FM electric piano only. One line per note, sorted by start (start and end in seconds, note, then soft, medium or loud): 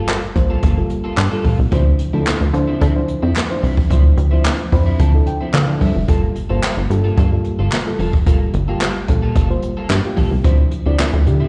0.00 0.23 G3 medium
0.00 0.23 A#3 medium
0.00 0.23 F4 medium
0.00 0.24 A4 medium
0.35 0.63 G3 medium
0.35 0.64 A#3 medium
0.35 0.64 F4 medium
0.35 0.64 C5 medium
0.77 1.14 G3 medium
0.77 1.14 A#3 medium
0.77 1.14 F4 medium
0.77 1.15 A4 medium
1.32 1.60 G3 medium
1.32 1.60 A#3 medium
1.32 1.60 F4 medium
1.32 1.60 A4 medium
1.72 2.00 F3 medium
1.72 2.00 D4 medium
1.72 2.00 E4 medium
1.72 2.00 C5 medium
2.13 2.42 F3 medium
2.13 2.42 D4 medium
2.13 2.42 E4 medium
2.13 2.42 A4 loud
2.54 2.82 F3 medium
2.54 2.82 D4 medium
2.54 2.82 E4 medium
2.54 2.82 C5 loud
2.95 3.32 F3 medium
2.95 3.32 D4 medium
2.95 3.33 E4 medium
2.95 3.33 C5 medium
3.50 3.78 F3 medium
3.50 3.78 D4 medium
3.50 3.78 E4 medium
3.50 3.78 C5 medium
3.90 4.18 F3 medium
3.90 4.19 D4 medium
3.90 4.19 E4 medium
3.90 4.19 C5 medium
4.32 4.60 F3 medium
4.32 4.60 D4 medium
4.32 4.60 E4 medium
4.32 4.60 C5 medium
4.72 5.00 F3 medium
4.72 5.00 D4 medium
4.72 5.00 E4 medium
4.72 5.00 C5 medium
4.72 4.98 B5 medium
5.00 5.25 A5 medium
5.14 5.51 F3 medium
5.14 5.51 D4 medium
5.14 5.51 E4 medium
5.14 5.51 A4 medium
5.27 5.52 G5 medium
5.54 5.79 F5 medium
5.67 5.96 F3 medium
5.67 5.96 D4 medium
5.67 5.96 E4 medium
5.67 5.96 A4 medium
5.81 6.06 E5 medium
6.08 6.36 G3 medium
6.08 6.36 A#3 medium
6.08 6.36 F4 medium
6.08 6.37 A4 medium
6.49 6.78 G3 medium
6.49 6.78 A#3 medium
6.49 6.78 F4 medium
6.49 6.78 C5 medium
6.90 7.18 G3 medium
6.90 7.18 A#3 medium
6.90 7.18 F4 medium
6.90 7.19 A4 medium
7.32 7.69 G3 medium
7.32 7.69 A#3 medium
7.32 7.69 F4 medium
7.32 7.69 A4 medium
7.86 8.14 G3 medium
7.86 8.14 A#3 medium
7.86 8.15 F4 medium
7.86 8.15 A4 medium
8.27 8.55 G3 medium
8.27 8.55 A#3 medium
8.27 8.55 F4 medium
8.27 8.55 A4 medium
8.68 8.96 G3 medium
8.68 8.96 A#3 medium
8.68 8.96 F4 medium
8.68 8.97 G4 medium
9.08 9.36 G3 medium
9.08 9.37 A#3 medium
9.08 9.37 F4 medium
9.08 9.37 A4 medium
9.50 9.87 G3 medium
9.50 9.87 A#3 medium
9.50 9.87 F4 medium
9.50 9.87 C5 medium
10.04 10.33 G3 medium
10.04 10.33 A#3 medium
10.04 10.33 F4 medium
10.04 10.33 G4 medium
10.44 10.73 F3 medium
10.44 10.73 D4 medium
10.44 10.73 E4 medium
10.44 10.73 C5 medium
10.86 11.14 F3 medium
10.86 11.15 D4 medium
10.86 11.15 E4 medium
10.86 11.15 D5 medium
11.26 11.48 F3 medium
11.26 11.48 D4 medium
11.26 11.48 E4 medium
11.26 11.48 G4 medium